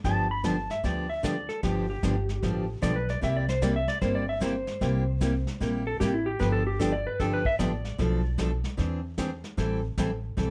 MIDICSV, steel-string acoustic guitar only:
0, 0, Header, 1, 2, 480
1, 0, Start_track
1, 0, Tempo, 397351
1, 48, Time_signature, 4, 2, 24, 8
1, 12688, End_track
2, 0, Start_track
2, 0, Title_t, "Steel-string acoustic guitar"
2, 0, Program_c, 0, 25
2, 52, Note_on_c, 0, 50, 58
2, 52, Note_on_c, 0, 53, 61
2, 58, Note_on_c, 0, 62, 66
2, 59, Note_on_c, 0, 59, 63
2, 67, Note_on_c, 0, 67, 66
2, 313, Note_off_c, 0, 50, 0
2, 314, Note_off_c, 0, 53, 0
2, 317, Note_off_c, 0, 59, 0
2, 317, Note_off_c, 0, 62, 0
2, 321, Note_off_c, 0, 67, 0
2, 528, Note_on_c, 0, 50, 67
2, 529, Note_on_c, 0, 53, 78
2, 534, Note_on_c, 0, 59, 71
2, 536, Note_on_c, 0, 62, 79
2, 540, Note_on_c, 0, 67, 77
2, 668, Note_off_c, 0, 50, 0
2, 668, Note_off_c, 0, 53, 0
2, 671, Note_off_c, 0, 59, 0
2, 672, Note_off_c, 0, 62, 0
2, 673, Note_off_c, 0, 67, 0
2, 1008, Note_on_c, 0, 50, 52
2, 1011, Note_on_c, 0, 53, 56
2, 1017, Note_on_c, 0, 59, 60
2, 1018, Note_on_c, 0, 62, 62
2, 1022, Note_on_c, 0, 67, 65
2, 1272, Note_off_c, 0, 50, 0
2, 1273, Note_off_c, 0, 53, 0
2, 1276, Note_off_c, 0, 59, 0
2, 1277, Note_off_c, 0, 62, 0
2, 1279, Note_off_c, 0, 67, 0
2, 1486, Note_on_c, 0, 50, 81
2, 1490, Note_on_c, 0, 53, 72
2, 1495, Note_on_c, 0, 59, 87
2, 1495, Note_on_c, 0, 62, 79
2, 1497, Note_on_c, 0, 67, 83
2, 1627, Note_off_c, 0, 50, 0
2, 1629, Note_off_c, 0, 53, 0
2, 1631, Note_off_c, 0, 62, 0
2, 1632, Note_off_c, 0, 59, 0
2, 1633, Note_off_c, 0, 67, 0
2, 1968, Note_on_c, 0, 50, 60
2, 1971, Note_on_c, 0, 53, 62
2, 1972, Note_on_c, 0, 59, 66
2, 1975, Note_on_c, 0, 62, 66
2, 1980, Note_on_c, 0, 67, 68
2, 2232, Note_off_c, 0, 50, 0
2, 2233, Note_off_c, 0, 53, 0
2, 2234, Note_off_c, 0, 59, 0
2, 2235, Note_off_c, 0, 62, 0
2, 2238, Note_off_c, 0, 67, 0
2, 2455, Note_on_c, 0, 50, 74
2, 2456, Note_on_c, 0, 53, 74
2, 2458, Note_on_c, 0, 62, 73
2, 2459, Note_on_c, 0, 59, 70
2, 2463, Note_on_c, 0, 67, 78
2, 2591, Note_off_c, 0, 50, 0
2, 2592, Note_off_c, 0, 53, 0
2, 2593, Note_off_c, 0, 62, 0
2, 2594, Note_off_c, 0, 59, 0
2, 2596, Note_off_c, 0, 67, 0
2, 2929, Note_on_c, 0, 50, 55
2, 2935, Note_on_c, 0, 53, 62
2, 2939, Note_on_c, 0, 59, 58
2, 2940, Note_on_c, 0, 62, 58
2, 2944, Note_on_c, 0, 67, 59
2, 3193, Note_off_c, 0, 50, 0
2, 3196, Note_off_c, 0, 53, 0
2, 3198, Note_off_c, 0, 59, 0
2, 3198, Note_off_c, 0, 62, 0
2, 3200, Note_off_c, 0, 67, 0
2, 3403, Note_on_c, 0, 50, 77
2, 3408, Note_on_c, 0, 53, 70
2, 3412, Note_on_c, 0, 59, 74
2, 3416, Note_on_c, 0, 62, 74
2, 3418, Note_on_c, 0, 67, 87
2, 3546, Note_off_c, 0, 50, 0
2, 3548, Note_off_c, 0, 53, 0
2, 3550, Note_off_c, 0, 59, 0
2, 3552, Note_off_c, 0, 62, 0
2, 3553, Note_off_c, 0, 67, 0
2, 3883, Note_on_c, 0, 48, 55
2, 3891, Note_on_c, 0, 55, 62
2, 3896, Note_on_c, 0, 58, 59
2, 3897, Note_on_c, 0, 64, 65
2, 3900, Note_on_c, 0, 67, 68
2, 4149, Note_off_c, 0, 48, 0
2, 4154, Note_off_c, 0, 55, 0
2, 4156, Note_off_c, 0, 58, 0
2, 4157, Note_off_c, 0, 64, 0
2, 4158, Note_off_c, 0, 67, 0
2, 4368, Note_on_c, 0, 48, 68
2, 4374, Note_on_c, 0, 55, 71
2, 4375, Note_on_c, 0, 58, 75
2, 4375, Note_on_c, 0, 64, 80
2, 4380, Note_on_c, 0, 67, 84
2, 4508, Note_off_c, 0, 48, 0
2, 4511, Note_off_c, 0, 55, 0
2, 4512, Note_off_c, 0, 58, 0
2, 4512, Note_off_c, 0, 64, 0
2, 4515, Note_off_c, 0, 67, 0
2, 4846, Note_on_c, 0, 48, 54
2, 4851, Note_on_c, 0, 55, 58
2, 4853, Note_on_c, 0, 58, 63
2, 4853, Note_on_c, 0, 64, 63
2, 4859, Note_on_c, 0, 67, 58
2, 5112, Note_off_c, 0, 48, 0
2, 5114, Note_off_c, 0, 55, 0
2, 5115, Note_off_c, 0, 58, 0
2, 5115, Note_off_c, 0, 64, 0
2, 5118, Note_off_c, 0, 67, 0
2, 5320, Note_on_c, 0, 48, 69
2, 5325, Note_on_c, 0, 55, 80
2, 5329, Note_on_c, 0, 58, 86
2, 5332, Note_on_c, 0, 64, 88
2, 5338, Note_on_c, 0, 67, 86
2, 5464, Note_off_c, 0, 48, 0
2, 5467, Note_off_c, 0, 55, 0
2, 5469, Note_off_c, 0, 58, 0
2, 5471, Note_off_c, 0, 64, 0
2, 5473, Note_off_c, 0, 67, 0
2, 5811, Note_on_c, 0, 48, 59
2, 5812, Note_on_c, 0, 55, 59
2, 5817, Note_on_c, 0, 58, 67
2, 5818, Note_on_c, 0, 64, 64
2, 5819, Note_on_c, 0, 67, 67
2, 6074, Note_off_c, 0, 48, 0
2, 6074, Note_off_c, 0, 55, 0
2, 6077, Note_off_c, 0, 58, 0
2, 6078, Note_off_c, 0, 64, 0
2, 6078, Note_off_c, 0, 67, 0
2, 6289, Note_on_c, 0, 48, 74
2, 6294, Note_on_c, 0, 55, 78
2, 6298, Note_on_c, 0, 58, 71
2, 6299, Note_on_c, 0, 64, 83
2, 6301, Note_on_c, 0, 67, 75
2, 6429, Note_off_c, 0, 48, 0
2, 6431, Note_off_c, 0, 55, 0
2, 6433, Note_off_c, 0, 58, 0
2, 6434, Note_off_c, 0, 64, 0
2, 6435, Note_off_c, 0, 67, 0
2, 6769, Note_on_c, 0, 48, 61
2, 6773, Note_on_c, 0, 55, 58
2, 6779, Note_on_c, 0, 58, 66
2, 6781, Note_on_c, 0, 67, 67
2, 6783, Note_on_c, 0, 64, 65
2, 7033, Note_off_c, 0, 48, 0
2, 7035, Note_off_c, 0, 55, 0
2, 7038, Note_off_c, 0, 58, 0
2, 7039, Note_off_c, 0, 67, 0
2, 7040, Note_off_c, 0, 64, 0
2, 7251, Note_on_c, 0, 48, 74
2, 7256, Note_on_c, 0, 58, 78
2, 7258, Note_on_c, 0, 55, 79
2, 7260, Note_on_c, 0, 64, 84
2, 7264, Note_on_c, 0, 67, 90
2, 7390, Note_off_c, 0, 48, 0
2, 7392, Note_off_c, 0, 58, 0
2, 7393, Note_off_c, 0, 55, 0
2, 7395, Note_off_c, 0, 64, 0
2, 7397, Note_off_c, 0, 67, 0
2, 7722, Note_on_c, 0, 50, 61
2, 7726, Note_on_c, 0, 53, 59
2, 7732, Note_on_c, 0, 59, 65
2, 7736, Note_on_c, 0, 62, 66
2, 7739, Note_on_c, 0, 67, 61
2, 7989, Note_off_c, 0, 50, 0
2, 7992, Note_off_c, 0, 53, 0
2, 7994, Note_off_c, 0, 59, 0
2, 7996, Note_off_c, 0, 62, 0
2, 7998, Note_off_c, 0, 67, 0
2, 8208, Note_on_c, 0, 50, 77
2, 8212, Note_on_c, 0, 53, 80
2, 8216, Note_on_c, 0, 59, 78
2, 8220, Note_on_c, 0, 62, 86
2, 8223, Note_on_c, 0, 67, 88
2, 8348, Note_off_c, 0, 50, 0
2, 8350, Note_off_c, 0, 53, 0
2, 8352, Note_off_c, 0, 59, 0
2, 8354, Note_off_c, 0, 62, 0
2, 8356, Note_off_c, 0, 67, 0
2, 8692, Note_on_c, 0, 50, 62
2, 8695, Note_on_c, 0, 53, 61
2, 8700, Note_on_c, 0, 59, 61
2, 8704, Note_on_c, 0, 62, 65
2, 8708, Note_on_c, 0, 67, 67
2, 8954, Note_off_c, 0, 50, 0
2, 8956, Note_off_c, 0, 53, 0
2, 8958, Note_off_c, 0, 59, 0
2, 8960, Note_off_c, 0, 62, 0
2, 8962, Note_off_c, 0, 67, 0
2, 9168, Note_on_c, 0, 50, 72
2, 9173, Note_on_c, 0, 59, 82
2, 9175, Note_on_c, 0, 53, 70
2, 9179, Note_on_c, 0, 62, 78
2, 9180, Note_on_c, 0, 67, 81
2, 9308, Note_off_c, 0, 50, 0
2, 9311, Note_off_c, 0, 59, 0
2, 9312, Note_off_c, 0, 53, 0
2, 9314, Note_off_c, 0, 62, 0
2, 9314, Note_off_c, 0, 67, 0
2, 9645, Note_on_c, 0, 47, 64
2, 9651, Note_on_c, 0, 57, 61
2, 9652, Note_on_c, 0, 53, 62
2, 9656, Note_on_c, 0, 62, 65
2, 9656, Note_on_c, 0, 69, 69
2, 9911, Note_off_c, 0, 47, 0
2, 9914, Note_off_c, 0, 53, 0
2, 9914, Note_off_c, 0, 57, 0
2, 9916, Note_off_c, 0, 62, 0
2, 9916, Note_off_c, 0, 69, 0
2, 10121, Note_on_c, 0, 47, 70
2, 10125, Note_on_c, 0, 53, 71
2, 10132, Note_on_c, 0, 57, 76
2, 10135, Note_on_c, 0, 62, 81
2, 10138, Note_on_c, 0, 69, 78
2, 10265, Note_off_c, 0, 47, 0
2, 10267, Note_off_c, 0, 53, 0
2, 10270, Note_off_c, 0, 57, 0
2, 10272, Note_off_c, 0, 62, 0
2, 10273, Note_off_c, 0, 69, 0
2, 10597, Note_on_c, 0, 52, 55
2, 10601, Note_on_c, 0, 60, 55
2, 10601, Note_on_c, 0, 62, 57
2, 10605, Note_on_c, 0, 68, 59
2, 10867, Note_off_c, 0, 52, 0
2, 10869, Note_off_c, 0, 60, 0
2, 10869, Note_off_c, 0, 62, 0
2, 10871, Note_off_c, 0, 68, 0
2, 11086, Note_on_c, 0, 52, 74
2, 11094, Note_on_c, 0, 60, 75
2, 11096, Note_on_c, 0, 62, 85
2, 11099, Note_on_c, 0, 68, 80
2, 11228, Note_off_c, 0, 52, 0
2, 11231, Note_off_c, 0, 60, 0
2, 11233, Note_off_c, 0, 62, 0
2, 11234, Note_off_c, 0, 68, 0
2, 11564, Note_on_c, 0, 52, 63
2, 11572, Note_on_c, 0, 60, 67
2, 11573, Note_on_c, 0, 55, 63
2, 11577, Note_on_c, 0, 64, 61
2, 11579, Note_on_c, 0, 69, 68
2, 11831, Note_off_c, 0, 52, 0
2, 11835, Note_off_c, 0, 55, 0
2, 11835, Note_off_c, 0, 60, 0
2, 11837, Note_off_c, 0, 64, 0
2, 11838, Note_off_c, 0, 69, 0
2, 12051, Note_on_c, 0, 52, 78
2, 12057, Note_on_c, 0, 55, 77
2, 12062, Note_on_c, 0, 60, 71
2, 12067, Note_on_c, 0, 64, 72
2, 12067, Note_on_c, 0, 69, 82
2, 12191, Note_off_c, 0, 52, 0
2, 12193, Note_off_c, 0, 55, 0
2, 12196, Note_off_c, 0, 60, 0
2, 12198, Note_off_c, 0, 69, 0
2, 12199, Note_off_c, 0, 64, 0
2, 12525, Note_on_c, 0, 52, 62
2, 12530, Note_on_c, 0, 55, 56
2, 12532, Note_on_c, 0, 60, 57
2, 12535, Note_on_c, 0, 64, 60
2, 12538, Note_on_c, 0, 69, 71
2, 12688, Note_off_c, 0, 52, 0
2, 12688, Note_off_c, 0, 55, 0
2, 12688, Note_off_c, 0, 60, 0
2, 12688, Note_off_c, 0, 64, 0
2, 12688, Note_off_c, 0, 69, 0
2, 12688, End_track
0, 0, End_of_file